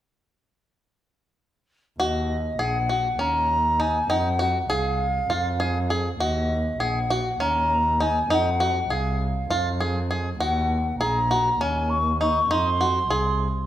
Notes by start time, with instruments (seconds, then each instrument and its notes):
1.99 double bass D#2, five-string banjo F#4, flute D#5
2.59 double bass A#1, five-string banjo G#4, flute F#5
2.89 five-string banjo F#4
3.19 double bass D#2, five-string banjo C#4, flute A#5
3.80 five-string banjo D#4, flute G#5
4.09 double bass F2, five-string banjo D#4, flute F#5
4.39 five-string banjo F#4
4.69 double bass C2, five-string banjo G#4, flute F5
5.29 double bass F2, five-string banjo F4
5.60 five-string banjo G#4
5.90 five-string banjo G#4
6.20 double bass D#2, five-string banjo F#4, flute D#5
6.79 double bass A#1, five-string banjo G#4, flute F#5
7.10 five-string banjo F#4
7.40 double bass D#2, five-string banjo C#4, flute A#5
8.00 five-string banjo D#4, flute G#5
8.30 double bass F2, five-string banjo D#4, flute F#5
8.60 five-string banjo F#4
8.90 double bass C2, five-string banjo G#4, flute F5
9.50 double bass F2, five-string banjo F4
9.80 five-string banjo G#4
10.11 five-string banjo G#4
10.39 double bass D#2, five-string banjo F#4, flute F#5
10.99 double bass A#1, five-string banjo G#4, flute A#5
11.31 five-string banjo F#4
11.60 double bass D#2, five-string banjo C#4, flute G#5
11.90 flute C#6
12.20 five-string banjo D#4, flute C#6
12.50 double bass F2, five-string banjo D#4, flute C6
12.81 five-string banjo F#4
13.09 double bass C2, five-string banjo G#4